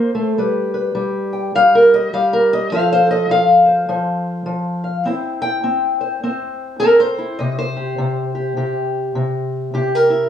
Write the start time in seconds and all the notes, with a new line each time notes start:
Already playing: A#3 C4 C5
0.15 A3
0.38 G3 B4
0.74 B4
0.95 G3
1.33 G5
1.55 G3 F5
1.75 A#4
1.94 D#5
2.13 G3 F5
2.33 A#4
2.53 D#5
2.72 F3 F4 A4 C5 F5
2.93 C5
3.07 A4 D#5
3.29 F3 F5
3.66 C5
3.89 F3 C5
4.46 F3
4.84 F5
5.05 C4 E4 C5 G5
5.42 G5
5.64 C4
6.01 C5
6.23 C4 C5
6.80 C4 A#4
7.00 C5
7.18 E4
7.39 C3 D#5
7.59 C5
7.77 G4
7.98 C3
8.35 G4
8.57 C3 G4
9.15 C3
9.74 C3 G4
9.95 A#4
10.10 E4